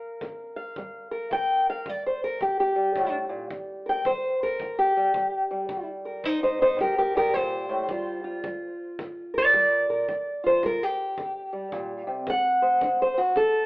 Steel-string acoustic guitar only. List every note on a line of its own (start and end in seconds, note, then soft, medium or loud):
0.00 0.17 G3 medium
0.00 1.11 A#4 medium
0.00 0.55 F5 medium
0.21 0.72 D3 medium
0.56 1.29 F5 medium
0.78 1.28 G3 medium
1.11 1.89 A#4 medium
1.31 1.82 G2 medium
1.31 1.69 G5 loud
1.70 1.87 F5 medium
1.87 2.37 G3 medium
1.87 2.06 D5 medium
2.06 2.23 C5 medium
2.24 2.42 A#4 medium
2.41 2.92 D3 medium
2.41 2.59 G4 medium
2.60 3.15 G4 medium
2.76 4.06 G3 medium
2.96 3.29 A2 medium
3.29 3.50 A#2 medium
3.51 4.02 G2 medium
3.86 4.06 A#4 soft
3.86 4.07 G5 loud
4.06 4.57 G3 medium
4.06 4.42 C5 loud
4.43 4.79 A#4 loud
4.61 5.12 G2 medium
4.79 5.88 G4 medium
4.97 5.15 G3 soft
5.16 5.50 G3 medium
5.51 6.25 G3 soft
5.70 6.21 C3 medium
6.05 6.26 A#4 medium
6.25 6.42 D#4 medium
6.25 6.42 C5 loud
6.43 6.61 D#4 medium
6.43 6.61 C5 medium
6.62 6.80 D#4 medium
6.62 6.80 C5 medium
6.80 7.14 G3 medium
6.80 6.97 G4 medium
6.80 6.98 A#4 medium
6.98 7.16 G4 medium
6.98 7.16 A#4 medium
7.15 7.89 G3 medium
7.15 7.35 G4 medium
7.15 7.34 A#4 loud
7.34 7.69 A#2 medium
7.34 8.98 C5 loud
7.69 7.89 A2 medium
7.89 8.40 G2 medium
7.89 8.44 G3 medium
7.89 8.24 F4 medium
8.24 10.06 F4 medium
8.44 8.95 G3 medium
8.99 9.49 D3 medium
9.34 9.88 A#4 medium
9.34 10.46 D5 loud
9.54 10.04 G3 medium
9.90 10.07 A#4 medium
10.09 10.59 G2 medium
10.44 10.83 F4 medium
10.44 10.64 C5 medium
10.64 11.14 G3 medium
10.64 10.83 A#4 medium
10.83 11.92 G4 loud
11.19 11.69 D3 medium
11.53 12.28 G3 medium
11.73 12.07 A#2 medium
12.07 12.27 C3 medium
12.27 12.78 D3 medium
12.27 13.02 F#5 loud
12.62 13.01 C5 soft
12.82 13.33 D4 medium
13.02 13.19 C5 medium
13.18 13.36 F#4 medium
13.36 13.66 D3 medium
13.36 13.66 A4 loud